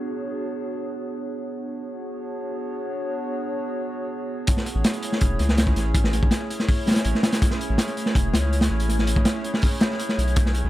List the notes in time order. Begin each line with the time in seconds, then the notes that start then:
Already playing: B3 D4 F#4 G#4 C#5
1.53 B3 D4 F#4 G#4 C#5
4.47 A3 C#4 E4 G#4 C#5, kick, closed hi-hat
4.57 snare
4.66 closed hi-hat
4.75 A1
4.84 snare, closed hi-hat
4.93 closed hi-hat
5.03 closed hi-hat
5.12 snare
5.21 E1, kick, closed hi-hat
5.39 C#2, closed hi-hat
5.49 snare
5.58 snare, closed hi-hat
5.67 kick
5.76 A1, snare, closed hi-hat
5.95 A3 C#4 E4 G#4 C#5, kick, closed hi-hat
6.04 snare
6.13 closed hi-hat
6.23 A1, kick
6.31 snare, closed hi-hat
6.50 closed hi-hat
6.60 snare
6.69 kick, open hi-hat
6.87 snare, closed hi-hat
6.91 snare, closed hi-hat
6.96 snare, closed hi-hat
7.05 A1, closed hi-hat
7.15 snare
7.23 snare, closed hi-hat
7.32 snare, closed hi-hat
7.42 A3 C#4 E4 G#4 C#5, kick, closed hi-hat
7.51 snare
7.61 closed hi-hat
7.70 A1
7.78 snare, closed hi-hat
7.88 closed hi-hat
7.97 closed hi-hat
8.06 snare
8.15 E1, kick, closed hi-hat
8.34 C#2, snare, closed hi-hat
8.53 closed hi-hat
8.61 snare, closed hi-hat
8.71 A1
8.80 closed hi-hat
8.89 A3 C#4 E4 G#4 C#5, closed hi-hat
8.99 snare
9.07 closed hi-hat
9.16 A1, kick
9.25 snare, closed hi-hat
9.44 closed hi-hat
9.54 snare
9.62 kick, open hi-hat
9.81 snare, closed hi-hat
9.91 snare
10.00 closed hi-hat
10.09 snare
10.18 B1, closed hi-hat
10.28 closed hi-hat
10.36 B3 D4 F#4 G#4 C#5, kick, closed hi-hat
10.46 snare
10.55 closed hi-hat
10.64 B1